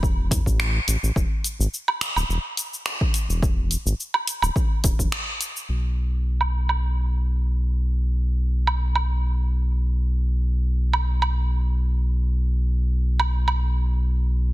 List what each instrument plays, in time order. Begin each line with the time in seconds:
Already playing: analog synth bass E1
0.03 kick, shaker
0.31 analog synth bass E2, kick, closed hi-hat, shaker
0.46 analog synth bass A1, kick, shaker
0.60 finger snap, shaker
0.88 analog synth bass A1, closed hi-hat, shaker
1.03 analog synth bass A1, shaker
1.16 analog synth bass E1, kick, shaker
1.44 closed hi-hat, shaker
1.59 analog synth bass G#1, shaker
1.74 shaker
1.88 low woodblock
2.01 finger snap, closed hi-hat, shaker
2.16 analog synth bass D1, low woodblock, shaker
2.29 analog synth bass E1, shaker
2.57 closed hi-hat, shaker
2.74 shaker
2.86 finger snap, shaker
3.01 kick
3.14 closed hi-hat, shaker
3.29 analog synth bass E1, shaker
3.43 kick, shaker
3.71 closed hi-hat, shaker
3.86 analog synth bass G#1, shaker
4.00 shaker
4.14 low woodblock
4.27 closed hi-hat, shaker
4.42 analog synth bass D1, low woodblock, shaker
4.56 kick, shaker
4.84 analog synth bass D1, kick, closed hi-hat, shaker
4.99 analog synth bass E1, kick, shaker
5.12 finger snap, shaker
5.41 closed hi-hat, shaker
5.57 shaker
5.69 analog synth bass B1
6.41 low woodblock
6.69 low woodblock
8.67 low woodblock
8.96 low woodblock
10.93 low woodblock
11.22 low woodblock
13.20 low woodblock
13.48 low woodblock